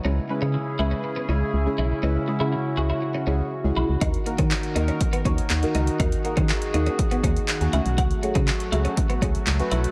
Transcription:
<<
  \new Staff \with { instrumentName = "Synth stab" } { \time 4/4 \key cis \minor \tempo 4 = 121 <gis cis' e' gis'>16 r16 <gis cis' e' b'>8. r16 <gis cis' e' b'>8. r16 <gis cis' e' gis'>8 r16 <gis cis' e' gis'>8 r16 | <gis cis' e' b'>16 r16 <gis cis' e' gis'>8. r16 <gis cis' e' gis'>8. r16 <gis cis' e' gis'>8 r16 <gis cis' e' gis'>8 r16 | <ais dis' fis' ais'>16 r16 <ais dis' fis' ais'>8. r16 <ais dis' fis' ais'>8. r16 <ais dis' fis' cis''>8 r16 <ais dis' fis' ais'>8 r16 | <ais dis' fis' ais'>16 r16 <ais dis' fis' ais'>8. r16 <ais dis' fis' ais'>8. r16 <ais dis' fis' gis'>8 r16 <ais dis' fis' gis'>16 <a cis' fis' gis'>8~ |
<a cis' fis' gis'>16 r16 <a cis' fis' gis'>8. r16 <a cis' fis' gis'>8. r16 <a cis' fis' gis'>8 r16 <a cis' fis' b'>8 r16 | }
  \new Staff \with { instrumentName = "Analog synth pad" } { \time 4/4 \key cis \minor << { gis'1 | fis'1 | ais'1 | gis'2.~ gis'8 r8 |
r1 | } \\ { <cis cis' e'>1~ | <cis cis' e'>1 | <dis dis'>1~ | <dis dis'>2.~ <dis dis'>8 <fis a>8~ |
<fis a>1 | } >> }
  \new Staff \with { instrumentName = "Clean electric guitar" } { \time 4/4 \key cis \minor cis'16 r8 cis'16 r8 e'16 cis'16 r16 b16 cis'16 r8. e'16 r16 | cis'16 r8 e'16 r8 fis'16 e'16 r16 cis'16 cis'16 r8. e'16 r16 | dis'16 r8 cis'16 r8 dis'16 cis'16 r16 b16 cis'16 r8. dis'16 r16 | dis'16 r8 cis'16 r8 dis'16 cis'16 r16 b16 cis'16 r8. e'16 r16 |
fis'16 r8 cis'16 r8 e'16 cis'16 r16 b16 cis'16 r8. e'16 r16 | }
  \new Staff \with { instrumentName = "FM bass" } { \clef bass \time 4/4 \key cis \minor cis,8 r16 cis8 r16 cis,8 r8 cis,8 cis,8 b,,8 | cis,8 r16 cis8 r16 cis,8 r8 cis,8 r16 cis,16 b,,16 cis,16 | dis,8 r16 dis8 r16 dis,8 r8 dis,8 dis,8 cis,8 | dis,8 r16 dis8 r16 dis,8 r8 dis,8 r16 dis,16 cis,16 b,,16 |
cis,8 r16 cis8 r16 cis,8 r8 cis,8 cis,8 b,,8 | }
  \new DrumStaff \with { instrumentName = "Drums" } \drummode { \time 4/4 r4 r4 r4 r4 | r4 r4 r4 r4 | <hh bd>16 hh16 hh16 <hh bd>16 <hc hh>16 hh16 hh16 hh16 <hh bd>16 hh16 <hh bd>16 hh16 <hc hh>16 hh16 hh16 hh16 | <hh bd>16 hh16 hh16 <hh bd>16 <hc hh>16 hh16 hh16 hh16 <hh bd>16 hh16 <hh bd>16 hh16 <hc hh>16 hh16 hh16 hh16 |
<hh bd>16 hh16 hh16 <hh bd>16 <hc hh>16 hh16 hh16 hh16 <hh bd>16 hh16 <hh bd>16 hh16 <hc hh>16 hh16 hh16 hh16 | }
>>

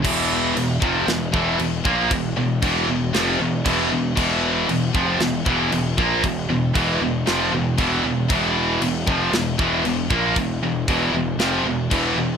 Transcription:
<<
  \new Staff \with { instrumentName = "Distorted electric guitar" } { \clef bass \time 4/4 \key c \lydian \tempo 4 = 116 <e, b, e>4 <e, b,>8 <f, c f>8 <e, b,>8 <e, b, e>8 <e, b,>8 <ais, f ais>8 | <e, b,>8 <e, b,>8 <e, b, e>8 <e, b,>8 <f, c f>8 <e, b,>8 <e, b, e>8 <e, b,>8 | <e, b, e>4 <e, b,>8 <f, c f>8 <e, b,>8 <e, b, e>8 <e, b,>8 <ais, f ais>8 | <e, b,>8 <e, b,>8 <e, b, e>8 <e, b,>8 <f, c f>8 <e, b,>8 <e, b, e>8 <e, b,>8 |
<e, b, e>4 <e, b,>8 <f, c f>8 <e, b,>8 <e, b, e>8 <e, b,>8 <ais, f ais>8 | <e, b,>8 <e, b,>8 <e, b, e>8 <e, b,>8 <f, c f>8 <e, b,>8 <e, b, e>8 <e, b,>8 | }
  \new Staff \with { instrumentName = "Distorted electric guitar" } { \clef bass \time 4/4 \key c \lydian <e, b, e>4 <e, b,>8 <f, c f>8 <e, b,>8 <e, b, e>8 <e, b,>8 <ais, f ais>8 | <e, b,>8 <e, b,>8 <e, b, e>8 <e, b,>8 <f, c f>8 <e, b,>8 <e, b, e>8 <e, b,>8 | <e, b, e>4 <e, b,>8 <f, c f>8 <e, b,>8 <e, b, e>8 <e, b,>8 <ais, f ais>8 | <e, b,>8 <e, b,>8 <e, b, e>8 <e, b,>8 <f, c f>8 <e, b,>8 <e, b, e>8 <e, b,>8 |
<e, b, e>4 <e, b,>8 <f, c f>8 <e, b,>8 <e, b, e>8 <e, b,>8 <ais, f ais>8 | <e, b,>8 <e, b,>8 <e, b, e>8 <e, b,>8 <f, c f>8 <e, b,>8 <e, b, e>8 <e, b,>8 | }
  \new Staff \with { instrumentName = "Distorted electric guitar" } { \clef bass \time 4/4 \key c \lydian <e, b, e>4 <e, b,>8 <f, c f>8 <e, b,>8 <e, b, e>8 <e, b,>8 <ais, f ais>8 | <e, b,>8 <e, b,>8 <e, b, e>8 <e, b,>8 <f, c f>8 <e, b,>8 <e, b, e>8 <e, b,>8 | <e, b, e>4 <e, b,>8 <f, c f>8 <e, b,>8 <e, b, e>8 <e, b,>8 <ais, f ais>8 | <e, b,>8 <e, b,>8 <e, b, e>8 <e, b,>8 <f, c f>8 <e, b,>8 <e, b, e>8 <e, b,>8 |
<e, b, e>4 <e, b,>8 <f, c f>8 <e, b,>8 <e, b, e>8 <e, b,>8 <ais, f ais>8 | <e, b,>8 <e, b,>8 <e, b, e>8 <e, b,>8 <f, c f>8 <e, b,>8 <e, b, e>8 <e, b,>8 | }
  \new Staff \with { instrumentName = "Picked electric bass" } { \clef bass \time 4/4 \key c \lydian e,,4 e,,8 f,,8 e,,8 e,,8 e,,8 ais,,8 | e,,8 e,,8 e,,8 e,,8 f,,8 e,,8 e,,8 e,,8 | e,,4 e,,8 f,,8 e,,8 e,,8 e,,8 ais,,8 | e,,8 e,,8 e,,8 e,,8 f,,8 e,,8 e,,8 e,,8 |
e,,4 e,,8 f,,8 e,,8 e,,8 e,,8 ais,,8 | e,,8 e,,8 e,,8 e,,8 f,,8 e,,8 e,,8 e,,8 | }
  \new DrumStaff \with { instrumentName = "Drums" } \drummode { \time 4/4 <cymc bd>4 cymc8 bd8 <cymc sn>8 bd8 cymc8 bd8 | <cymc bd>4 <cymc bd>4 <cymc sn>4 <cymc bd>4 | <cymc bd>4 cymc8 bd8 <cymc sn>8 bd8 cymc8 bd8 | <cymc bd>4 <cymc bd>4 <cymc sn>4 <cymc bd>4 |
<cymc bd>4 cymc8 bd8 <cymc sn>8 bd8 cymc8 bd8 | <cymc bd>4 <cymc bd>4 <cymc sn>4 <cymc bd>4 | }
>>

